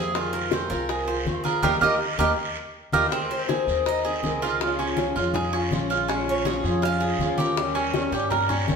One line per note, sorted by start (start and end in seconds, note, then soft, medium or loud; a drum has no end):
0.00 0.65 F2 medium
0.00 0.14 A#3 soft
0.00 0.14 C4 soft
0.00 0.14 E4 soft
0.00 0.15 G#4 medium
0.00 0.32 G#4 medium
0.14 0.50 C3 medium
0.14 0.50 D#3 medium
0.14 0.51 G#3 medium
0.14 0.51 C4 medium
0.14 0.51 F4 medium
0.14 0.52 F4 medium
0.14 high bongo medium
0.14 high conga soft
0.14 long guiro medium
0.33 0.68 A#4 medium
0.33 high bongo soft
0.33 high conga soft
0.51 0.69 C3 medium
0.51 0.70 D#3 medium
0.51 0.70 G#3 medium
0.51 0.69 C4 medium
0.51 0.68 F4 medium
0.51 0.89 C5 medium
0.51 high bongo medium
0.51 high conga medium
0.51 short guiro medium
0.70 1.22 C2 medium
0.70 1.08 G#3 soft
0.70 1.06 C4 soft
0.70 1.05 F4 soft
0.70 1.41 A#4 medium
0.70 high conga soft
0.70 short guiro medium
0.89 1.08 G#4 medium
0.89 high bongo medium
0.89 high conga soft
0.89 long guiro medium
1.06 1.25 G#3 soft
1.06 1.26 C4 soft
1.06 1.25 F4 soft
1.06 1.44 C5 medium
1.06 high bongo soft
1.06 high conga soft
1.25 1.60 D#2 medium
1.25 1.44 C3 medium
1.25 1.44 D#3 medium
1.25 1.44 G#3 medium
1.25 1.44 C4 medium
1.25 1.43 F4 medium
1.25 high bongo soft
1.25 low bongo medium
1.25 high conga medium
1.25 short guiro medium
1.44 1.63 G#3 soft
1.44 1.63 C4 soft
1.44 1.63 F4 soft
1.44 1.63 G#4 medium
1.44 1.62 A#4 medium
1.44 high bongo soft
1.44 high conga medium
1.44 short guiro medium
1.62 1.77 D#2 medium
1.62 1.75 G3 medium
1.62 1.75 A#3 medium
1.62 1.75 D#4 medium
1.62 1.75 F4 medium
1.62 1.75 G4 medium
1.62 1.75 A#4 medium
1.62 1.75 D#5 medium
1.62 low bongo loud
1.62 high conga medium
1.62 long guiro medium
1.81 1.96 D#2 medium
1.81 1.93 G3 medium
1.81 1.93 A#3 medium
1.81 1.94 D#4 medium
1.81 1.94 F4 medium
1.81 1.94 G4 medium
1.81 1.95 G4 medium
1.81 1.94 A#4 medium
1.81 1.95 A#4 medium
1.81 1.95 D#5 loud
1.81 low bongo loud
1.81 high conga medium
1.81 long guiro medium
2.18 2.33 D#2 medium
2.18 2.31 G3 medium
2.18 2.31 A#3 medium
2.18 2.31 D#4 medium
2.18 2.31 F4 medium
2.18 2.31 G4 medium
2.18 2.32 G4 medium
2.18 2.31 A#4 medium
2.18 2.32 A#4 medium
2.18 2.32 D#5 medium
2.18 low bongo medium
2.18 high conga medium
2.92 3.07 D#2 medium
2.92 3.05 G3 medium
2.92 3.05 A#3 medium
2.92 3.05 D#4 medium
2.92 3.06 F4 medium
2.92 3.05 G4 medium
2.92 3.06 G4 medium
2.92 3.06 A#4 medium
2.92 3.06 D#5 medium
2.92 low bongo medium
2.92 high conga loud
2.92 long guiro loud
3.10 3.47 G#3 medium
3.10 3.47 C4 medium
3.10 3.48 C4 medium
3.10 3.48 D#4 medium
3.10 3.48 A#4 medium
3.10 high bongo medium
3.10 long guiro medium
3.31 3.83 C5 medium
3.31 high bongo soft
3.31 high conga soft
3.48 3.67 G#3 medium
3.48 3.67 C4 medium
3.48 3.67 D#4 medium
3.48 3.85 G#4 medium
3.48 3.66 A#4 medium
3.48 high bongo medium
3.48 high conga medium
3.48 short guiro medium
3.67 4.19 D#2 medium
3.67 4.05 C4 soft
3.67 4.04 D#4 soft
3.67 4.04 A#4 soft
3.67 high conga soft
3.67 short guiro medium
3.86 4.05 D#4 medium
3.86 4.39 D#5 medium
3.86 high bongo medium
3.86 high conga soft
3.86 long guiro medium
4.05 4.24 C4 soft
4.05 4.24 D#4 soft
4.05 4.41 G#4 medium
4.05 4.23 A#4 soft
4.05 high bongo soft
4.05 high conga soft
4.23 5.10 C#2 medium
4.23 4.42 G#3 medium
4.23 4.42 C4 medium
4.23 4.42 D#4 medium
4.23 4.42 A#4 medium
4.23 high bongo soft
4.23 low bongo medium
4.23 high conga medium
4.23 short guiro medium
4.42 4.61 C4 soft
4.42 4.61 D#4 soft
4.42 4.78 F4 medium
4.42 4.94 G#4 medium
4.42 4.61 A#4 soft
4.42 high bongo soft
4.42 short guiro medium
4.61 4.96 C#3 medium
4.61 4.96 F3 medium
4.61 4.97 G#3 medium
4.61 4.97 C#4 medium
4.61 4.98 F4 medium
4.61 high bongo medium
4.61 high conga soft
4.61 long guiro medium
4.79 5.15 C#4 medium
4.79 high bongo soft
4.79 high conga soft
4.97 5.15 C#3 medium
4.97 5.16 F3 medium
4.97 5.16 G#3 medium
4.97 5.16 C#4 medium
4.97 5.15 F4 medium
4.97 high bongo medium
4.97 high conga medium
4.97 short guiro medium
5.16 5.68 F2 medium
5.16 5.54 G#3 soft
5.16 5.53 C#4 soft
5.16 5.34 F4 medium
5.16 5.52 F4 medium
5.16 high conga soft
5.16 short guiro medium
5.34 5.53 G#4 medium
5.34 high bongo medium
5.34 high conga soft
5.34 low conga medium
5.34 long guiro medium
5.53 5.72 G#3 soft
5.53 5.89 C#4 medium
5.53 5.72 C#4 soft
5.53 5.71 F4 medium
5.53 high bongo soft
5.53 high conga soft
5.71 6.59 A#1 medium
5.71 5.90 C#3 medium
5.71 5.90 F3 medium
5.71 5.91 G#3 medium
5.71 5.90 C#4 medium
5.71 5.90 F4 medium
5.71 high bongo soft
5.71 low bongo medium
5.71 high conga medium
5.71 short guiro medium
5.90 6.09 G#3 soft
5.90 6.09 C#4 soft
5.90 6.08 F4 medium
5.90 6.09 F4 soft
5.90 high bongo soft
5.90 short guiro medium
6.08 6.45 F3 medium
6.08 6.46 G#3 medium
6.08 6.45 C#4 medium
6.08 6.46 C#4 medium
6.08 6.46 F4 medium
6.08 high bongo medium
6.08 high conga soft
6.08 long guiro medium
6.26 6.80 C#5 medium
6.26 high bongo soft
6.26 high conga soft
6.45 6.64 F3 medium
6.45 6.64 G#3 medium
6.45 6.64 C#4 medium
6.45 6.64 F4 medium
6.45 6.82 G#4 medium
6.45 high bongo medium
6.45 high conga medium
6.45 short guiro medium
6.63 7.16 F2 medium
6.63 7.02 G#3 soft
6.63 7.01 C#4 soft
6.63 7.00 F4 medium
6.63 high conga soft
6.63 short guiro medium
6.82 7.01 F4 medium
6.82 7.36 F5 loud
6.82 high bongo medium
6.82 high conga soft
6.82 long guiro medium
7.00 7.20 G#3 soft
7.00 7.20 C#4 soft
7.00 7.19 F4 soft
7.00 7.37 G#4 medium
7.00 high bongo soft
7.00 high conga soft
7.18 8.06 D#2 medium
7.18 7.38 F3 medium
7.18 7.39 G#3 medium
7.18 7.39 C#4 medium
7.18 7.38 F4 medium
7.18 high bongo soft
7.18 low bongo medium
7.18 high conga medium
7.18 short guiro medium
7.38 7.58 G#3 soft
7.38 7.57 C#4 soft
7.38 7.57 F4 soft
7.38 7.74 G4 medium
7.38 7.91 A#4 medium
7.38 high bongo soft
7.38 high conga medium
7.38 short guiro medium
7.57 7.93 D#3 medium
7.57 7.94 G3 medium
7.57 7.95 C#4 medium
7.57 7.94 G4 medium
7.57 high bongo medium
7.57 high conga soft
7.57 long guiro medium
7.75 8.11 C#4 medium
7.75 high bongo soft
7.94 8.12 D#3 medium
7.94 8.12 G3 medium
7.94 8.12 C#4 medium
7.94 8.12 G4 medium
7.94 high bongo medium
7.94 high conga medium
7.94 short guiro medium
8.12 8.64 G2 medium
8.12 8.50 G3 soft
8.12 8.49 C#4 soft
8.12 8.30 G4 medium
8.12 8.48 G4 medium
8.12 high conga soft
8.12 short guiro medium
8.30 8.49 A#4 medium
8.30 high bongo medium
8.30 high conga soft
8.30 low conga medium
8.30 long guiro medium
8.49 8.68 G3 soft
8.49 8.76 C#4 medium
8.49 8.68 C#4 soft
8.49 8.68 G4 soft
8.49 high bongo soft
8.49 high conga soft
8.49 low conga medium
8.67 8.76 C2 medium
8.67 8.76 D#3 medium
8.67 8.76 G3 medium
8.67 8.76 C#4 medium
8.67 8.76 G4 medium
8.67 high bongo soft
8.67 low bongo medium
8.67 high conga medium
8.67 short guiro medium